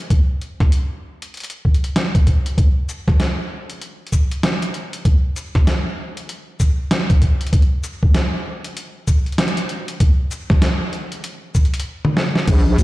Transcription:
0.10 kick loud
0.10 closed hi-hat medium
0.41 closed hi-hat soft
0.60 kick loud
0.60 snare soft
0.72 closed hi-hat medium
1.22 closed hi-hat medium
1.34 closed hi-hat soft
1.37 closed hi-hat soft
1.40 closed hi-hat soft
1.44 closed hi-hat soft
1.50 closed hi-hat medium
1.65 kick medium
1.74 closed hi-hat soft
1.84 closed hi-hat soft
1.96 snare loud
1.96 closed hi-hat medium
2.15 kick loud
2.15 closed hi-hat medium
2.27 kick medium
2.27 closed hi-hat medium
2.46 closed hi-hat medium
2.58 kick loud
2.58 closed hi-hat medium
2.89 closed hi-hat soft
2.89 shaker medium
3.08 kick loud
3.08 snare medium
3.20 snare loud
3.20 closed hi-hat medium
3.70 closed hi-hat soft
3.81 closed hi-hat medium
4.07 closed hi-hat soft
4.12 kick medium
4.12 shaker medium
4.31 closed hi-hat soft
4.43 snare loud
4.43 closed hi-hat medium
4.62 closed hi-hat medium
4.74 closed hi-hat soft
4.93 closed hi-hat medium
5.05 kick loud
5.05 closed hi-hat medium
5.36 closed hi-hat soft
5.36 shaker medium
5.55 kick loud
5.55 snare medium
5.67 snare loud
5.67 closed hi-hat medium
6.17 closed hi-hat soft
6.29 closed hi-hat medium
6.60 kick medium
6.60 closed hi-hat soft
6.60 shaker medium
6.91 snare loud
6.91 closed hi-hat medium
7.10 kick loud
7.10 closed hi-hat medium
7.22 kick medium
7.22 closed hi-hat soft
7.41 closed hi-hat medium
7.47 closed hi-hat soft
7.53 kick loud
7.53 closed hi-hat medium
7.62 closed hi-hat soft
7.84 closed hi-hat soft
7.84 shaker medium
8.03 kick loud
8.14 snare loud
8.14 closed hi-hat medium
8.64 closed hi-hat medium
8.77 closed hi-hat medium
9.07 kick medium
9.07 closed hi-hat soft
9.07 shaker medium
9.26 closed hi-hat soft
9.32 closed hi-hat soft
9.38 snare loud
9.38 closed hi-hat medium
9.48 closed hi-hat soft
9.57 closed hi-hat medium
9.69 closed hi-hat medium
9.88 closed hi-hat medium
10.00 kick loud
10.00 closed hi-hat medium
10.31 closed hi-hat soft
10.31 shaker medium
10.50 kick loud
10.50 snare medium
10.62 snare loud
10.62 closed hi-hat medium
10.93 closed hi-hat soft
11.12 closed hi-hat medium
11.24 closed hi-hat medium
11.55 kick medium
11.55 closed hi-hat soft
11.55 shaker medium
11.65 closed hi-hat soft
11.74 closed hi-hat medium
11.75 closed hi-hat soft
11.80 closed hi-hat medium
12.05 high tom medium
12.17 snare medium
12.35 snare medium
12.48 12.77 A#1 medium
12.48 kick loud
12.48 closed hi-hat medium
12.48 crash loud
12.78 12.83 D2 loud
12.78 closed hi-hat soft
12.78 shaker medium

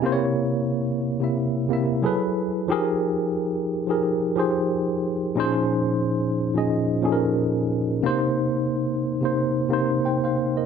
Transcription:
0.02 1.09 C3 loud
0.02 1.10 A#3 medium
0.02 1.11 E4 medium
0.06 0.12 C5 medium
0.12 1.15 C#5 loud
1.20 1.65 C3 medium
1.20 1.66 A#3 medium
1.20 1.67 E4 medium
1.20 1.67 E5 medium
1.69 2.03 C3 medium
1.69 2.04 A#3 medium
1.69 2.02 E4 medium
1.73 2.05 E5 medium
2.02 2.64 F#3 medium
2.02 2.65 E4 medium
2.02 2.65 G#4 medium
2.02 2.66 A4 medium
2.02 2.66 B4 medium
2.68 3.76 F3 medium
2.68 3.77 D#4 medium
2.68 3.77 G4 medium
2.68 3.78 G#4 medium
2.72 3.78 A#4 loud
3.87 4.32 F3 medium
3.87 4.33 D#4 medium
3.87 4.33 G4 medium
3.87 4.34 G#4 medium
3.91 4.34 A#4 medium
4.36 5.28 F3 medium
4.36 5.29 D#4 medium
4.36 5.29 G4 medium
4.36 5.29 G#4 medium
4.36 5.30 C5 medium
5.35 6.43 A#2 loud
5.35 6.44 F3 medium
5.35 6.44 C#4 medium
5.35 6.44 D#4 medium
5.35 6.45 G#4 medium
5.40 6.45 C5 loud
6.54 6.99 A#2 medium
6.54 6.99 F3 medium
6.54 7.00 C#4 medium
6.54 7.00 D#4 medium
6.54 7.01 G#4 medium
6.54 7.01 D#5 medium
7.02 7.95 A#2 medium
7.02 7.95 F3 medium
7.02 7.96 C#4 medium
7.02 7.96 D#4 medium
7.02 7.96 G#4 medium
7.02 7.12 A4 medium
7.12 8.00 A#4 medium
8.03 9.10 C3 medium
8.03 9.10 A#3 medium
8.03 9.11 D#4 medium
8.03 9.12 C5 loud
9.21 9.66 C3 medium
9.21 9.67 A#3 medium
9.21 9.67 D#4 medium
9.25 9.68 C5 medium
9.69 10.62 C3 medium
9.69 10.62 A#3 medium
9.69 10.63 D#4 medium
9.73 10.05 C5 medium
10.05 10.23 C5 soft
10.05 10.22 G5 medium
10.24 10.55 C5 soft
10.24 10.55 F5 medium
10.57 10.66 A#4 medium
10.57 10.66 D#5 medium

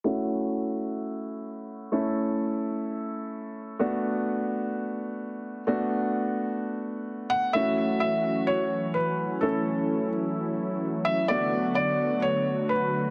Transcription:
0.04 1.88 A3 medium
0.04 1.88 C#4 medium
0.04 1.89 E4 medium
0.04 1.89 F#4 medium
1.92 3.76 A3 medium
1.92 3.76 C#4 medium
1.92 3.76 E4 medium
1.92 3.76 A4 medium
3.79 5.63 A3 medium
3.79 5.63 B3 medium
3.79 5.64 D4 medium
3.79 5.64 F#4 medium
5.67 7.51 A3 medium
5.67 7.51 B3 medium
5.67 7.51 D4 medium
5.67 7.51 F#4 medium
7.30 7.52 F#5 loud
7.53 11.26 E3 medium
7.53 13.10 F#3 medium
7.53 9.38 A3 medium
7.53 13.10 A3 medium
7.53 9.38 C#4 medium
7.53 11.26 C#4 medium
7.53 9.39 E4 medium
7.53 9.40 F#4 medium
7.53 9.39 F#4 medium
7.53 7.99 E5 loud
8.00 8.49 E5 medium
8.47 8.96 C#5 medium
8.94 9.43 B4 medium
9.41 11.26 A3 medium
9.41 11.26 C#4 medium
9.41 11.28 E4 medium
9.41 11.26 E4 medium
9.41 10.08 A4 medium
9.41 11.26 A4 medium
11.05 11.30 E5 loud
11.28 13.10 D3 medium
11.28 13.10 A3 medium
11.28 13.10 B3 medium
11.28 13.10 D4 medium
11.28 13.10 F#4 medium
11.28 11.74 D5 loud
11.75 12.20 D5 medium
12.22 12.71 C#5 medium
12.69 13.10 B4 medium

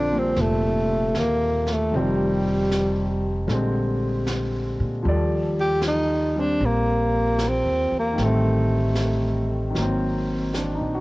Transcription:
0.00 0.34 A#1 medium
0.00 1.93 D3 soft
0.00 0.10 F3 soft
0.00 1.94 C4 soft
0.00 0.20 D4 medium
0.00 1.94 A4 soft
0.10 1.94 A#2 soft
0.10 1.93 F3 soft
0.10 1.91 G3 soft
0.19 0.42 C4 medium
0.36 1.11 F1 medium
0.36 brush sweep soft
0.36 snare soft
0.41 1.17 A3 medium
1.15 1.90 D#2 medium
1.15 snare soft
1.15 hi-hat pedal soft
1.19 1.74 A#3 medium
1.67 snare soft
1.73 1.98 A3 medium
1.91 3.45 F1 medium
1.91 3.47 D#3 soft
1.91 3.49 F3 soft
1.91 3.46 G3 soft
1.91 brush sweep soft
1.95 3.50 G3 medium
1.95 3.49 C4 soft
2.72 snare soft
2.72 hi-hat pedal medium
3.47 4.75 A#1 medium
3.47 5.03 D3 soft
3.47 5.03 G3 soft
3.47 5.05 G#3 soft
3.47 brush sweep soft
3.47 snare soft
3.52 5.06 C4 soft
4.27 snare soft
4.27 hi-hat pedal soft
4.80 5.02 A#2 medium
5.03 6.56 D#2 medium
5.03 8.16 F3 soft
5.03 6.35 G3 soft
5.03 8.18 A4 soft
5.03 brush sweep soft
5.08 8.19 D5 soft
5.60 5.82 G4 medium
5.82 snare soft
5.82 hi-hat pedal soft
5.88 6.41 D#4 medium
6.36 8.16 G3 soft
6.36 8.19 C4 soft
6.36 6.67 D4 medium
6.61 7.61 A#1 medium
6.61 brush sweep soft
6.65 7.50 A#3 medium
7.39 snare soft
7.39 hi-hat pedal soft
7.48 7.97 C4 medium
7.65 7.89 D#2 soft
7.92 8.16 E2 medium
7.99 8.25 A#3 medium
8.13 9.69 D#3 soft
8.17 9.71 A1 medium
8.17 9.75 G3 soft
8.17 9.77 A3 soft
8.17 brush sweep soft
8.17 snare soft
8.23 9.78 A3 medium
8.23 9.78 C4 soft
8.95 snare soft
8.95 hi-hat pedal soft
9.70 11.01 D#3 soft
9.74 10.76 G#1 medium
9.74 11.01 F#3 soft
9.74 11.01 A#3 soft
9.74 brush sweep soft
9.74 snare soft
9.81 11.01 C4 soft
10.54 10.92 D4 soft
10.54 snare soft
10.54 hi-hat pedal soft
10.75 11.01 D#4 soft
10.81 11.01 A#1 soft
10.94 11.01 F#4 soft

